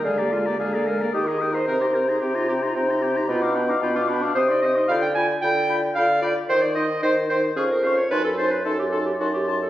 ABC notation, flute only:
X:1
M:3/4
L:1/16
Q:1/4=112
K:Cm
V:1 name="Flute"
a b a b a b a b e' b e' b | b c' b c' b c' b c' b c' b c' | =b d' b d' b d' b d' e' c' e' c' | [K:Gphr] =b2 b2 b2 b2 b2 b2 |
c'2 c'2 c'2 c'2 _d'2 d'2 | c'2 c'2 c'2 c'2 c'2 c'2 |]